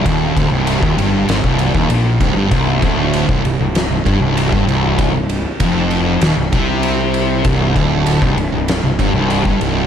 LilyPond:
<<
  \new Staff \with { instrumentName = "Distorted electric guitar" } { \clef bass \time 4/4 \key c \minor \tempo 4 = 97 ees,8 d,16 c,8 ees,16 g,8 aes,16 c,8 ees,16 bes,8 c,16 g,16 | c,8 d,8. c,16 c,16 c,8 c,16 g,16 c,8 g,16 c,8~ | c,16 c,8 r16 f,4 ees,16 c,16 c4. | c,8 d,8. c,16 c,16 c,8 c,16 g,16 c,8 g,16 c,8 | }
  \new Staff \with { instrumentName = "Distorted electric guitar" } { \clef bass \time 4/4 \key c \minor ees,8 d,16 c,8 ees,16 g,8 aes,16 c,8 ees,16 bes,8 c,16 g,16 | c,8 d,8. c,16 c,16 c,8 c,16 g,16 c,8 g,16 c,8~ | c,16 c,8 r16 f,4 ees,16 c,16 c4. | c,8 d,8. c,16 c,16 c,8 c,16 g,16 c,8 g,16 c,8 | }
  \new Staff \with { instrumentName = "Fingered electric bass" } { \clef bass \time 4/4 \key c \minor ees,,8 d,,16 c,,8 ees,,16 g,,8 aes,,16 c,,8 ees,,16 bes,,8 c,,16 g,,16 | c,,8 d,,8. c,,16 c,,16 c,,8 c,,16 g,,16 c,,8 g,,16 c,,8~ | c,,16 c,,8 r16 f,,4 ees,,16 c,,16 c,4. | c,,8 d,,8. c,,16 c,,16 c,,8 c,,16 g,,16 c,,8 g,,16 c,,8 | }
  \new DrumStaff \with { instrumentName = "Drums" } \drummode { \time 4/4 <bd cymr>8 <bd cymr>8 cymr16 bd16 cymr8 <cymr sn>16 bd16 cymr16 bd16 cymr8 <bd cymr>8 | <bd cymr>8 <bd cymr>8 cymr16 bd16 cymr8 <cymr sn>8 <bd cymr>8 cymr16 bd16 cymr8 | <bd cymr>8 cymr8 <bd cymr>8 cymr8 <cymr sn>8 <bd cymr>8 cymr8 cymr8 | <bd cymr>8 <bd cymr>8 cymr16 bd16 cymr8 <cymr sn>8 <bd cymr>8 cymr16 bd16 cymr8 | }
>>